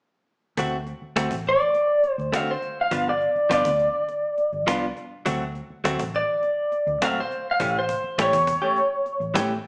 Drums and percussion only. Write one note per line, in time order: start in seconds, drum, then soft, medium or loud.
0.57 cajon bass medium
0.73 cajon slap soft
0.87 cajon slap soft
1.17 cajon slap medium
1.31 cajon bass medium
1.45 cajon slap soft
1.61 cajon slap soft
1.74 cajon slap soft
2.04 cajon slap soft
2.19 cajon slap soft
2.34 cajon slap medium
2.62 cajon slap soft
2.91 cajon bass medium
3.21 cajon slap soft
3.36 cajon slap soft
3.51 cajon slap medium
3.65 cajon bass medium
3.79 cajon slap soft
4.09 cajon slap soft
4.38 cajon slap soft
4.53 cajon slap soft
4.68 cajon slap medium
4.82 cajon slap soft
4.97 cajon slap soft
5.26 cajon bass medium
5.41 cajon slap soft
5.55 cajon slap soft
5.85 cajon slap medium
5.99 cajon bass medium
6.14 cajon slap soft
6.43 cajon slap soft
6.72 cajon slap soft
6.87 cajon slap soft
7.02 cajon slap loud
7.31 cajon slap soft
7.60 cajon bass medium
7.89 cajon bass medium
8.04 cajon slap soft
8.19 cajon slap loud
8.33 cajon bass medium
8.47 cajon bass medium
8.77 cajon slap soft
9.06 cajon slap soft
9.21 cajon slap soft
9.35 cajon slap loud
9.50 cajon slap soft